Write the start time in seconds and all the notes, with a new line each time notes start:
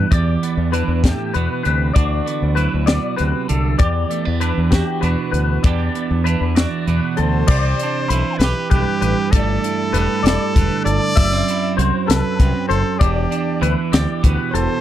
Already playing: E2 E3 E4 B4
0.11 E2 G4 D5, kick, closed hi-hat
0.43 B3, closed hi-hat
0.57 E2
0.72 E3 D4 B4, closed hi-hat
0.88 E2
1.03 A2 G4, kick, snare, closed hi-hat
1.34 E2 B2 B4, closed hi-hat
1.63 D2 C3 B4, closed hi-hat
1.93 D2 D3 F#4 D5, kick, closed hi-hat
2.26 B3, closed hi-hat
2.42 D2
2.55 F#3 E4 B4, closed hi-hat
2.74 D2
2.86 B2 D5, snare, closed hi-hat
3.16 D2 C3 B4, closed hi-hat
3.48 C2 D3 A4, closed hi-hat
3.79 E2 G4 D5, kick, closed hi-hat
4.10 A3, closed hi-hat
4.25 E2 B3
4.40 E3 D4 B4, closed hi-hat
4.58 E2
4.71 F#4 G4, kick, snare, closed hi-hat
5.01 E2 B2 D4 B4, closed hi-hat
5.31 D2 B4, closed hi-hat
5.63 E2 E3 B3 D4 D5, kick, closed hi-hat
5.67 G4
5.95 B3, closed hi-hat
6.11 E2
6.24 E3 D4 B4, closed hi-hat
6.41 E2
6.55 F#4 D5, snare, closed hi-hat
6.86 E2 B2 D4 B4, closed hi-hat
7.17 D2 A4 C5, closed hi-hat
7.47 C2 C3 C4 D5, kick, crash
7.79 D4, closed hi-hat
8.09 B1 E3 B5, closed hi-hat
8.38 B1 G4 B4, snare, closed hi-hat
8.44 G4
8.70 B1 G2 G4 B4, kick, closed hi-hat
9.01 A1 B4, closed hi-hat
9.31 G1 G2 A4 D5, kick, closed hi-hat
9.36 A3
9.64 E4, closed hi-hat
9.93 E1 G3 B4, closed hi-hat
10.23 E1 D5, closed hi-hat
10.27 E4, snare
10.54 E1 D3 B4, kick, closed hi-hat
10.84 G1 A4 D5, closed hi-hat
11.16 F#1 F#2 A3 E5, kick, closed hi-hat
11.33 C4
11.48 E4, closed hi-hat
11.77 C2 F#3 C5, closed hi-hat
12.06 C2 A4 B4, closed hi-hat
12.11 snare
12.39 C2 F#2 C4, kick, closed hi-hat
12.68 F#1 A4 C5, closed hi-hat
12.98 E1 E2 D4 G4 D5, kick, closed hi-hat
13.31 D4, closed hi-hat
13.61 D2 E3 B4, closed hi-hat
13.92 D2 G4 D5, snare, closed hi-hat
14.23 D2 B2 B4, kick, closed hi-hat
14.52 E1 A4 C5, closed hi-hat